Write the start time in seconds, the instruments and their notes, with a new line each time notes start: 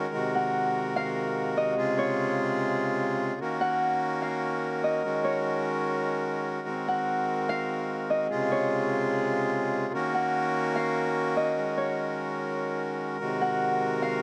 Already playing: accordion D#3 G#3 C#4 F#4 A#4, harp C#5
0.14 accordion C3 F#4
0.35 harp F#5
0.96 harp F5
1.57 harp D#5
1.78 accordion C#3 F4 G#4
1.99 harp C#5
3.41 accordion D#3 A#3 C#4 F#4 A#4
3.61 harp F#5
4.22 harp F5
4.84 harp D#5
5.04 accordion D#3 G#3 C#4 F#4
5.24 harp C#5
6.68 accordion C4
6.88 harp F#5
7.49 harp F5
8.10 harp D#5
8.31 accordion C3 C#3 F4 G#4
8.52 harp C#5
9.94 accordion D#3 A#3 C#4 F#4 A#4
10.14 harp F#5
10.76 harp F5
11.37 harp D#5
11.58 accordion G#3
11.78 harp C#5
13.21 accordion C3 D#3 G#3 F#4
13.41 harp F#5
14.02 harp F5